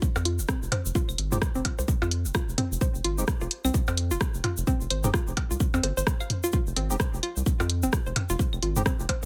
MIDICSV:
0, 0, Header, 1, 6, 480
1, 0, Start_track
1, 0, Key_signature, -4, "minor"
1, 0, Tempo, 465116
1, 981, Time_signature, 4, 2, 24, 8
1, 9549, End_track
2, 0, Start_track
2, 0, Title_t, "Synth arpeggio sound"
2, 0, Program_c, 0, 84
2, 262, Note_on_c, 0, 65, 80
2, 352, Note_off_c, 0, 65, 0
2, 501, Note_on_c, 0, 60, 106
2, 538, Note_off_c, 0, 60, 0
2, 742, Note_on_c, 0, 72, 79
2, 802, Note_off_c, 0, 72, 0
2, 982, Note_on_c, 0, 65, 104
2, 1042, Note_off_c, 0, 65, 0
2, 1364, Note_on_c, 0, 65, 76
2, 1426, Note_off_c, 0, 65, 0
2, 1603, Note_on_c, 0, 60, 105
2, 1628, Note_off_c, 0, 60, 0
2, 1843, Note_on_c, 0, 72, 77
2, 1885, Note_off_c, 0, 72, 0
2, 2084, Note_on_c, 0, 65, 105
2, 2125, Note_off_c, 0, 65, 0
2, 2422, Note_on_c, 0, 65, 85
2, 2512, Note_off_c, 0, 65, 0
2, 2662, Note_on_c, 0, 60, 103
2, 2698, Note_off_c, 0, 60, 0
2, 2902, Note_on_c, 0, 72, 85
2, 2962, Note_off_c, 0, 72, 0
2, 3142, Note_on_c, 0, 65, 102
2, 3202, Note_off_c, 0, 65, 0
2, 3524, Note_on_c, 0, 65, 79
2, 3586, Note_off_c, 0, 65, 0
2, 3763, Note_on_c, 0, 60, 105
2, 3788, Note_off_c, 0, 60, 0
2, 4004, Note_on_c, 0, 72, 80
2, 4045, Note_off_c, 0, 72, 0
2, 4243, Note_on_c, 0, 65, 105
2, 4285, Note_off_c, 0, 65, 0
2, 4581, Note_on_c, 0, 65, 78
2, 4672, Note_off_c, 0, 65, 0
2, 4822, Note_on_c, 0, 60, 105
2, 4858, Note_off_c, 0, 60, 0
2, 5062, Note_on_c, 0, 72, 74
2, 5122, Note_off_c, 0, 72, 0
2, 5302, Note_on_c, 0, 65, 103
2, 5362, Note_off_c, 0, 65, 0
2, 5683, Note_on_c, 0, 65, 77
2, 5746, Note_off_c, 0, 65, 0
2, 5923, Note_on_c, 0, 60, 104
2, 5949, Note_off_c, 0, 60, 0
2, 6022, Note_on_c, 0, 72, 79
2, 6082, Note_off_c, 0, 72, 0
2, 6163, Note_on_c, 0, 72, 103
2, 6205, Note_off_c, 0, 72, 0
2, 6403, Note_on_c, 0, 77, 103
2, 6445, Note_off_c, 0, 77, 0
2, 6643, Note_on_c, 0, 65, 104
2, 6685, Note_off_c, 0, 65, 0
2, 6741, Note_on_c, 0, 65, 86
2, 6832, Note_off_c, 0, 65, 0
2, 6982, Note_on_c, 0, 60, 98
2, 7018, Note_off_c, 0, 60, 0
2, 7222, Note_on_c, 0, 72, 85
2, 7282, Note_off_c, 0, 72, 0
2, 7462, Note_on_c, 0, 65, 100
2, 7522, Note_off_c, 0, 65, 0
2, 7843, Note_on_c, 0, 65, 76
2, 7906, Note_off_c, 0, 65, 0
2, 8083, Note_on_c, 0, 60, 103
2, 8108, Note_off_c, 0, 60, 0
2, 8323, Note_on_c, 0, 72, 81
2, 8365, Note_off_c, 0, 72, 0
2, 8563, Note_on_c, 0, 65, 103
2, 8605, Note_off_c, 0, 65, 0
2, 8902, Note_on_c, 0, 65, 74
2, 8992, Note_off_c, 0, 65, 0
2, 9142, Note_on_c, 0, 60, 108
2, 9178, Note_off_c, 0, 60, 0
2, 9382, Note_on_c, 0, 72, 77
2, 9442, Note_off_c, 0, 72, 0
2, 9549, End_track
3, 0, Start_track
3, 0, Title_t, "Synth stab"
3, 0, Program_c, 1, 62
3, 1363, Note_on_c, 1, 56, 101
3, 1363, Note_on_c, 1, 60, 92
3, 1363, Note_on_c, 1, 63, 95
3, 1363, Note_on_c, 1, 67, 112
3, 1418, Note_off_c, 1, 56, 0
3, 1418, Note_off_c, 1, 60, 0
3, 1418, Note_off_c, 1, 63, 0
3, 1418, Note_off_c, 1, 67, 0
3, 3284, Note_on_c, 1, 56, 87
3, 3284, Note_on_c, 1, 60, 78
3, 3284, Note_on_c, 1, 63, 78
3, 3284, Note_on_c, 1, 67, 98
3, 3339, Note_off_c, 1, 56, 0
3, 3339, Note_off_c, 1, 60, 0
3, 3339, Note_off_c, 1, 63, 0
3, 3339, Note_off_c, 1, 67, 0
3, 5203, Note_on_c, 1, 56, 102
3, 5203, Note_on_c, 1, 60, 93
3, 5203, Note_on_c, 1, 63, 92
3, 5203, Note_on_c, 1, 67, 109
3, 5258, Note_off_c, 1, 56, 0
3, 5258, Note_off_c, 1, 60, 0
3, 5258, Note_off_c, 1, 63, 0
3, 5258, Note_off_c, 1, 67, 0
3, 7123, Note_on_c, 1, 56, 87
3, 7123, Note_on_c, 1, 60, 83
3, 7123, Note_on_c, 1, 63, 78
3, 7123, Note_on_c, 1, 67, 98
3, 7178, Note_off_c, 1, 56, 0
3, 7178, Note_off_c, 1, 60, 0
3, 7178, Note_off_c, 1, 63, 0
3, 7178, Note_off_c, 1, 67, 0
3, 9043, Note_on_c, 1, 56, 103
3, 9043, Note_on_c, 1, 60, 91
3, 9043, Note_on_c, 1, 63, 90
3, 9043, Note_on_c, 1, 67, 110
3, 9098, Note_off_c, 1, 56, 0
3, 9098, Note_off_c, 1, 60, 0
3, 9098, Note_off_c, 1, 63, 0
3, 9098, Note_off_c, 1, 67, 0
3, 9549, End_track
4, 0, Start_track
4, 0, Title_t, "Analog synth bass"
4, 0, Program_c, 2, 38
4, 163, Note_on_c, 2, 41, 91
4, 404, Note_on_c, 2, 29, 81
4, 419, Note_off_c, 2, 41, 0
4, 465, Note_off_c, 2, 29, 0
4, 644, Note_on_c, 2, 29, 96
4, 705, Note_off_c, 2, 29, 0
4, 884, Note_on_c, 2, 29, 92
4, 945, Note_off_c, 2, 29, 0
4, 1124, Note_on_c, 2, 29, 101
4, 1185, Note_off_c, 2, 29, 0
4, 1222, Note_on_c, 2, 32, 82
4, 1363, Note_on_c, 2, 29, 90
4, 1379, Note_off_c, 2, 32, 0
4, 1425, Note_off_c, 2, 29, 0
4, 1603, Note_on_c, 2, 29, 104
4, 1665, Note_off_c, 2, 29, 0
4, 1843, Note_on_c, 2, 36, 91
4, 1905, Note_off_c, 2, 36, 0
4, 2083, Note_on_c, 2, 41, 90
4, 2324, Note_on_c, 2, 29, 80
4, 2339, Note_off_c, 2, 41, 0
4, 2385, Note_off_c, 2, 29, 0
4, 2563, Note_on_c, 2, 29, 99
4, 2625, Note_off_c, 2, 29, 0
4, 2803, Note_on_c, 2, 29, 91
4, 2865, Note_off_c, 2, 29, 0
4, 3043, Note_on_c, 2, 29, 100
4, 3105, Note_off_c, 2, 29, 0
4, 3142, Note_on_c, 2, 32, 81
4, 3283, Note_on_c, 2, 29, 91
4, 3299, Note_off_c, 2, 32, 0
4, 3345, Note_off_c, 2, 29, 0
4, 3523, Note_on_c, 2, 29, 105
4, 3585, Note_off_c, 2, 29, 0
4, 3764, Note_on_c, 2, 36, 91
4, 3825, Note_off_c, 2, 36, 0
4, 4003, Note_on_c, 2, 41, 92
4, 4243, Note_on_c, 2, 29, 83
4, 4259, Note_off_c, 2, 41, 0
4, 4305, Note_off_c, 2, 29, 0
4, 4483, Note_on_c, 2, 29, 98
4, 4545, Note_off_c, 2, 29, 0
4, 4723, Note_on_c, 2, 29, 91
4, 4785, Note_off_c, 2, 29, 0
4, 4963, Note_on_c, 2, 29, 100
4, 5025, Note_off_c, 2, 29, 0
4, 5062, Note_on_c, 2, 32, 80
4, 5203, Note_on_c, 2, 29, 93
4, 5219, Note_off_c, 2, 32, 0
4, 5265, Note_off_c, 2, 29, 0
4, 5443, Note_on_c, 2, 29, 107
4, 5505, Note_off_c, 2, 29, 0
4, 5683, Note_on_c, 2, 36, 90
4, 5745, Note_off_c, 2, 36, 0
4, 5923, Note_on_c, 2, 41, 91
4, 5985, Note_off_c, 2, 41, 0
4, 6022, Note_on_c, 2, 31, 96
4, 6110, Note_off_c, 2, 31, 0
4, 6163, Note_on_c, 2, 31, 94
4, 6225, Note_off_c, 2, 31, 0
4, 6883, Note_on_c, 2, 29, 101
4, 6945, Note_off_c, 2, 29, 0
4, 6981, Note_on_c, 2, 32, 84
4, 7123, Note_on_c, 2, 29, 89
4, 7138, Note_off_c, 2, 32, 0
4, 7185, Note_off_c, 2, 29, 0
4, 7363, Note_on_c, 2, 29, 105
4, 7425, Note_off_c, 2, 29, 0
4, 7603, Note_on_c, 2, 36, 89
4, 7665, Note_off_c, 2, 36, 0
4, 7843, Note_on_c, 2, 41, 90
4, 8084, Note_on_c, 2, 29, 79
4, 8099, Note_off_c, 2, 41, 0
4, 8145, Note_off_c, 2, 29, 0
4, 8324, Note_on_c, 2, 29, 98
4, 8385, Note_off_c, 2, 29, 0
4, 8563, Note_on_c, 2, 29, 91
4, 8625, Note_off_c, 2, 29, 0
4, 8803, Note_on_c, 2, 29, 101
4, 8865, Note_off_c, 2, 29, 0
4, 8901, Note_on_c, 2, 32, 85
4, 9043, Note_on_c, 2, 29, 89
4, 9059, Note_off_c, 2, 32, 0
4, 9105, Note_off_c, 2, 29, 0
4, 9283, Note_on_c, 2, 29, 108
4, 9345, Note_off_c, 2, 29, 0
4, 9549, End_track
5, 0, Start_track
5, 0, Title_t, "Percussion blips"
5, 163, Note_on_c, 9, 63, 46
5, 163, Note_on_c, 9, 76, 73
5, 266, Note_off_c, 9, 63, 0
5, 266, Note_off_c, 9, 76, 0
5, 741, Note_on_c, 9, 76, 71
5, 844, Note_off_c, 9, 76, 0
5, 981, Note_on_c, 9, 63, 47
5, 1085, Note_off_c, 9, 63, 0
5, 1701, Note_on_c, 9, 76, 67
5, 1805, Note_off_c, 9, 76, 0
5, 1843, Note_on_c, 9, 63, 46
5, 1947, Note_off_c, 9, 63, 0
5, 2083, Note_on_c, 9, 76, 70
5, 2186, Note_off_c, 9, 76, 0
5, 2661, Note_on_c, 9, 63, 48
5, 2765, Note_off_c, 9, 63, 0
5, 3523, Note_on_c, 9, 63, 47
5, 3627, Note_off_c, 9, 63, 0
5, 4003, Note_on_c, 9, 76, 70
5, 4106, Note_off_c, 9, 76, 0
5, 4341, Note_on_c, 9, 63, 46
5, 4445, Note_off_c, 9, 63, 0
5, 4581, Note_on_c, 9, 76, 64
5, 4685, Note_off_c, 9, 76, 0
5, 5203, Note_on_c, 9, 63, 46
5, 5306, Note_off_c, 9, 63, 0
5, 5541, Note_on_c, 9, 76, 66
5, 5645, Note_off_c, 9, 76, 0
5, 5923, Note_on_c, 9, 76, 66
5, 6021, Note_on_c, 9, 63, 47
5, 6026, Note_off_c, 9, 76, 0
5, 6124, Note_off_c, 9, 63, 0
5, 6981, Note_on_c, 9, 63, 46
5, 7084, Note_off_c, 9, 63, 0
5, 7843, Note_on_c, 9, 63, 48
5, 7843, Note_on_c, 9, 76, 67
5, 7946, Note_off_c, 9, 63, 0
5, 7946, Note_off_c, 9, 76, 0
5, 8422, Note_on_c, 9, 76, 66
5, 8525, Note_off_c, 9, 76, 0
5, 8661, Note_on_c, 9, 63, 43
5, 8764, Note_off_c, 9, 63, 0
5, 9382, Note_on_c, 9, 76, 68
5, 9485, Note_off_c, 9, 76, 0
5, 9549, End_track
6, 0, Start_track
6, 0, Title_t, "Drums"
6, 22, Note_on_c, 9, 36, 114
6, 24, Note_on_c, 9, 82, 61
6, 125, Note_off_c, 9, 36, 0
6, 127, Note_off_c, 9, 82, 0
6, 163, Note_on_c, 9, 82, 42
6, 262, Note_on_c, 9, 42, 92
6, 266, Note_off_c, 9, 82, 0
6, 365, Note_off_c, 9, 42, 0
6, 402, Note_on_c, 9, 82, 78
6, 501, Note_off_c, 9, 82, 0
6, 501, Note_on_c, 9, 82, 68
6, 502, Note_on_c, 9, 36, 122
6, 502, Note_on_c, 9, 37, 98
6, 604, Note_off_c, 9, 82, 0
6, 605, Note_off_c, 9, 36, 0
6, 605, Note_off_c, 9, 37, 0
6, 648, Note_on_c, 9, 82, 41
6, 741, Note_on_c, 9, 45, 84
6, 742, Note_on_c, 9, 42, 93
6, 752, Note_off_c, 9, 82, 0
6, 844, Note_off_c, 9, 45, 0
6, 845, Note_off_c, 9, 42, 0
6, 884, Note_on_c, 9, 82, 85
6, 982, Note_on_c, 9, 36, 123
6, 983, Note_off_c, 9, 82, 0
6, 983, Note_on_c, 9, 82, 70
6, 1085, Note_off_c, 9, 36, 0
6, 1086, Note_off_c, 9, 82, 0
6, 1123, Note_on_c, 9, 75, 64
6, 1126, Note_on_c, 9, 82, 41
6, 1222, Note_on_c, 9, 42, 97
6, 1226, Note_off_c, 9, 75, 0
6, 1229, Note_off_c, 9, 82, 0
6, 1325, Note_off_c, 9, 42, 0
6, 1363, Note_on_c, 9, 45, 83
6, 1364, Note_on_c, 9, 82, 80
6, 1462, Note_on_c, 9, 36, 124
6, 1462, Note_on_c, 9, 37, 97
6, 1466, Note_off_c, 9, 45, 0
6, 1467, Note_off_c, 9, 82, 0
6, 1467, Note_on_c, 9, 82, 75
6, 1565, Note_off_c, 9, 36, 0
6, 1565, Note_off_c, 9, 37, 0
6, 1571, Note_off_c, 9, 82, 0
6, 1598, Note_on_c, 9, 82, 43
6, 1702, Note_off_c, 9, 82, 0
6, 1702, Note_on_c, 9, 36, 64
6, 1702, Note_on_c, 9, 42, 95
6, 1805, Note_off_c, 9, 36, 0
6, 1805, Note_off_c, 9, 42, 0
6, 1846, Note_on_c, 9, 82, 90
6, 1942, Note_on_c, 9, 36, 123
6, 1943, Note_off_c, 9, 82, 0
6, 1943, Note_on_c, 9, 82, 74
6, 2045, Note_off_c, 9, 36, 0
6, 2046, Note_off_c, 9, 82, 0
6, 2090, Note_on_c, 9, 82, 41
6, 2182, Note_on_c, 9, 42, 95
6, 2193, Note_off_c, 9, 82, 0
6, 2285, Note_off_c, 9, 42, 0
6, 2326, Note_on_c, 9, 82, 73
6, 2419, Note_off_c, 9, 82, 0
6, 2419, Note_on_c, 9, 82, 65
6, 2421, Note_on_c, 9, 75, 64
6, 2422, Note_on_c, 9, 36, 127
6, 2422, Note_on_c, 9, 37, 99
6, 2522, Note_off_c, 9, 82, 0
6, 2525, Note_off_c, 9, 36, 0
6, 2525, Note_off_c, 9, 37, 0
6, 2525, Note_off_c, 9, 75, 0
6, 2571, Note_on_c, 9, 82, 43
6, 2661, Note_on_c, 9, 45, 85
6, 2662, Note_on_c, 9, 42, 98
6, 2675, Note_off_c, 9, 82, 0
6, 2765, Note_off_c, 9, 42, 0
6, 2765, Note_off_c, 9, 45, 0
6, 2812, Note_on_c, 9, 82, 82
6, 2902, Note_on_c, 9, 36, 120
6, 2903, Note_off_c, 9, 82, 0
6, 2903, Note_on_c, 9, 82, 73
6, 3005, Note_off_c, 9, 36, 0
6, 3006, Note_off_c, 9, 82, 0
6, 3043, Note_on_c, 9, 82, 45
6, 3142, Note_on_c, 9, 42, 99
6, 3147, Note_off_c, 9, 82, 0
6, 3245, Note_off_c, 9, 42, 0
6, 3284, Note_on_c, 9, 82, 82
6, 3382, Note_off_c, 9, 82, 0
6, 3382, Note_on_c, 9, 36, 126
6, 3382, Note_on_c, 9, 37, 93
6, 3382, Note_on_c, 9, 82, 65
6, 3485, Note_off_c, 9, 36, 0
6, 3485, Note_off_c, 9, 37, 0
6, 3485, Note_off_c, 9, 82, 0
6, 3518, Note_on_c, 9, 82, 38
6, 3621, Note_off_c, 9, 82, 0
6, 3622, Note_on_c, 9, 42, 99
6, 3725, Note_off_c, 9, 42, 0
6, 3763, Note_on_c, 9, 75, 65
6, 3765, Note_on_c, 9, 82, 81
6, 3861, Note_off_c, 9, 82, 0
6, 3861, Note_on_c, 9, 82, 74
6, 3862, Note_on_c, 9, 36, 125
6, 3866, Note_off_c, 9, 75, 0
6, 3964, Note_off_c, 9, 82, 0
6, 3965, Note_off_c, 9, 36, 0
6, 3998, Note_on_c, 9, 82, 45
6, 4101, Note_off_c, 9, 82, 0
6, 4102, Note_on_c, 9, 42, 99
6, 4205, Note_off_c, 9, 42, 0
6, 4241, Note_on_c, 9, 82, 83
6, 4341, Note_off_c, 9, 82, 0
6, 4341, Note_on_c, 9, 82, 66
6, 4342, Note_on_c, 9, 36, 127
6, 4342, Note_on_c, 9, 37, 97
6, 4445, Note_off_c, 9, 36, 0
6, 4445, Note_off_c, 9, 37, 0
6, 4445, Note_off_c, 9, 82, 0
6, 4482, Note_on_c, 9, 82, 42
6, 4581, Note_on_c, 9, 42, 98
6, 4581, Note_on_c, 9, 45, 82
6, 4585, Note_off_c, 9, 82, 0
6, 4685, Note_off_c, 9, 42, 0
6, 4685, Note_off_c, 9, 45, 0
6, 4719, Note_on_c, 9, 82, 87
6, 4822, Note_off_c, 9, 82, 0
6, 4822, Note_on_c, 9, 36, 119
6, 4822, Note_on_c, 9, 82, 65
6, 4925, Note_off_c, 9, 36, 0
6, 4925, Note_off_c, 9, 82, 0
6, 4962, Note_on_c, 9, 82, 45
6, 5061, Note_on_c, 9, 42, 98
6, 5061, Note_on_c, 9, 75, 65
6, 5065, Note_off_c, 9, 82, 0
6, 5165, Note_off_c, 9, 42, 0
6, 5165, Note_off_c, 9, 75, 0
6, 5200, Note_on_c, 9, 82, 82
6, 5203, Note_on_c, 9, 45, 78
6, 5301, Note_on_c, 9, 37, 90
6, 5302, Note_on_c, 9, 36, 123
6, 5303, Note_off_c, 9, 82, 0
6, 5306, Note_off_c, 9, 45, 0
6, 5311, Note_on_c, 9, 82, 62
6, 5404, Note_off_c, 9, 37, 0
6, 5405, Note_off_c, 9, 36, 0
6, 5414, Note_off_c, 9, 82, 0
6, 5443, Note_on_c, 9, 82, 44
6, 5541, Note_on_c, 9, 42, 101
6, 5542, Note_on_c, 9, 36, 66
6, 5546, Note_off_c, 9, 82, 0
6, 5645, Note_off_c, 9, 36, 0
6, 5645, Note_off_c, 9, 42, 0
6, 5687, Note_on_c, 9, 82, 80
6, 5779, Note_off_c, 9, 82, 0
6, 5779, Note_on_c, 9, 82, 74
6, 5782, Note_on_c, 9, 36, 122
6, 5883, Note_off_c, 9, 82, 0
6, 5885, Note_off_c, 9, 36, 0
6, 5925, Note_on_c, 9, 82, 43
6, 6021, Note_on_c, 9, 42, 92
6, 6028, Note_off_c, 9, 82, 0
6, 6124, Note_off_c, 9, 42, 0
6, 6169, Note_on_c, 9, 82, 83
6, 6261, Note_on_c, 9, 37, 95
6, 6262, Note_on_c, 9, 36, 123
6, 6268, Note_off_c, 9, 82, 0
6, 6268, Note_on_c, 9, 82, 73
6, 6364, Note_off_c, 9, 37, 0
6, 6365, Note_off_c, 9, 36, 0
6, 6371, Note_off_c, 9, 82, 0
6, 6402, Note_on_c, 9, 82, 44
6, 6403, Note_on_c, 9, 75, 65
6, 6501, Note_on_c, 9, 42, 96
6, 6501, Note_on_c, 9, 45, 77
6, 6505, Note_off_c, 9, 82, 0
6, 6506, Note_off_c, 9, 75, 0
6, 6604, Note_off_c, 9, 42, 0
6, 6604, Note_off_c, 9, 45, 0
6, 6642, Note_on_c, 9, 82, 89
6, 6733, Note_off_c, 9, 82, 0
6, 6733, Note_on_c, 9, 82, 64
6, 6741, Note_on_c, 9, 36, 117
6, 6836, Note_off_c, 9, 82, 0
6, 6845, Note_off_c, 9, 36, 0
6, 6883, Note_on_c, 9, 82, 37
6, 6981, Note_on_c, 9, 42, 91
6, 6986, Note_off_c, 9, 82, 0
6, 7084, Note_off_c, 9, 42, 0
6, 7126, Note_on_c, 9, 82, 79
6, 7221, Note_on_c, 9, 37, 89
6, 7222, Note_on_c, 9, 36, 122
6, 7224, Note_off_c, 9, 82, 0
6, 7224, Note_on_c, 9, 82, 69
6, 7325, Note_off_c, 9, 36, 0
6, 7325, Note_off_c, 9, 37, 0
6, 7327, Note_off_c, 9, 82, 0
6, 7370, Note_on_c, 9, 82, 42
6, 7461, Note_on_c, 9, 42, 93
6, 7461, Note_on_c, 9, 75, 66
6, 7473, Note_off_c, 9, 82, 0
6, 7564, Note_off_c, 9, 75, 0
6, 7565, Note_off_c, 9, 42, 0
6, 7602, Note_on_c, 9, 82, 73
6, 7702, Note_on_c, 9, 36, 120
6, 7703, Note_off_c, 9, 82, 0
6, 7703, Note_on_c, 9, 82, 65
6, 7805, Note_off_c, 9, 36, 0
6, 7806, Note_off_c, 9, 82, 0
6, 7844, Note_on_c, 9, 82, 40
6, 7942, Note_on_c, 9, 42, 91
6, 7947, Note_off_c, 9, 82, 0
6, 8045, Note_off_c, 9, 42, 0
6, 8078, Note_on_c, 9, 82, 80
6, 8181, Note_off_c, 9, 82, 0
6, 8181, Note_on_c, 9, 37, 91
6, 8182, Note_on_c, 9, 36, 121
6, 8182, Note_on_c, 9, 82, 73
6, 8284, Note_off_c, 9, 37, 0
6, 8285, Note_off_c, 9, 36, 0
6, 8285, Note_off_c, 9, 82, 0
6, 8322, Note_on_c, 9, 82, 40
6, 8421, Note_on_c, 9, 42, 94
6, 8422, Note_on_c, 9, 45, 79
6, 8425, Note_off_c, 9, 82, 0
6, 8524, Note_off_c, 9, 42, 0
6, 8525, Note_off_c, 9, 45, 0
6, 8560, Note_on_c, 9, 82, 73
6, 8662, Note_on_c, 9, 36, 112
6, 8663, Note_off_c, 9, 82, 0
6, 8668, Note_on_c, 9, 82, 59
6, 8765, Note_off_c, 9, 36, 0
6, 8771, Note_off_c, 9, 82, 0
6, 8803, Note_on_c, 9, 75, 67
6, 8806, Note_on_c, 9, 82, 36
6, 8901, Note_on_c, 9, 42, 92
6, 8906, Note_off_c, 9, 75, 0
6, 8909, Note_off_c, 9, 82, 0
6, 9004, Note_off_c, 9, 42, 0
6, 9042, Note_on_c, 9, 82, 84
6, 9043, Note_on_c, 9, 45, 77
6, 9141, Note_on_c, 9, 37, 90
6, 9142, Note_off_c, 9, 82, 0
6, 9142, Note_on_c, 9, 36, 118
6, 9142, Note_on_c, 9, 82, 61
6, 9146, Note_off_c, 9, 45, 0
6, 9245, Note_off_c, 9, 36, 0
6, 9245, Note_off_c, 9, 37, 0
6, 9245, Note_off_c, 9, 82, 0
6, 9285, Note_on_c, 9, 82, 41
6, 9381, Note_on_c, 9, 42, 92
6, 9382, Note_on_c, 9, 36, 61
6, 9388, Note_off_c, 9, 82, 0
6, 9484, Note_off_c, 9, 42, 0
6, 9485, Note_off_c, 9, 36, 0
6, 9549, End_track
0, 0, End_of_file